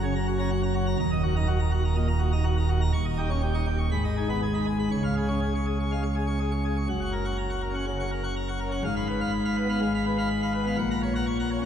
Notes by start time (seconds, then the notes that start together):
Already playing: F#1 F#2
0.03 C#3 C#5
0.16 A#5
0.28 F#4
0.39 C#4 A#5
0.51 F#4
0.63 A#5
0.75 F#4
0.87 A#5
0.99 D#1 D#2 A#5
1.11 D#5
1.23 F#4
1.36 D#4 A#5
1.48 F#4
1.60 A#5
1.72 F#4
1.85 A#5
1.96 A#2 D#5
2.08 A#5
2.20 F#4
2.32 D#4 A#5
2.44 F#4
2.57 A#5
2.69 F#4
2.81 A#5
2.93 D#1 D#2 C#6
3.06 D#5
3.18 D#4 G4
3.30 C#4 C#6
3.42 G4
3.54 D#4 C#6
3.67 G4
3.79 C#6
3.91 G#1 G#2 B5
4.05 D#5
4.17 D#4 G#4
4.29 B3 B5
4.42 G#4
4.54 D#4 B5
4.67 G#4
4.80 B5
4.92 C#2 C#3 C#6
5.04 F5
5.17 G#4
5.29 C#4 C#6
5.42 G#4
5.55 C#6
5.66 G#4
5.80 C#6
5.91 G#3 F5
6.04 C#6
6.16 G#4
6.27 C#4 C#6
6.40 G#4
6.52 C#6
6.65 G#4
6.77 C#6
6.89 F#1 F#2 F#5
7.02 F#5 C#6
7.13 A#4
7.25 F#5 C#6
7.38 A#5
7.50 F#5 C#6
7.62 A#4
7.70 C#4
7.74 F#5 C#6
7.87 C#3 F#5
8.00 F#5 C#6
8.11 A#4
8.24 F#5 C#6
8.36 A#5
8.48 F#5 C#6
8.60 A#4
8.69 C#4 F#5 C#6
8.84 G#1 G#2 F5
8.96 F5 B5
9.09 B4
9.21 F5 B5
9.32 B5
9.45 F5 B5
9.57 B4
9.65 B3
9.69 F5 B5
9.82 G#1 G#2 F5
9.94 F5 B5
10.07 B4
10.18 F5 B5
10.30 B5
10.42 F5 B5
10.54 B4
10.62 B3
10.66 F5 B5
10.78 A#1 A#2 F#5
10.91 F#5 A#5
11.03 C#5
11.15 F#5 A#5
11.27 C#6
11.40 F#5 A#5
11.51 C#5
11.58 C#4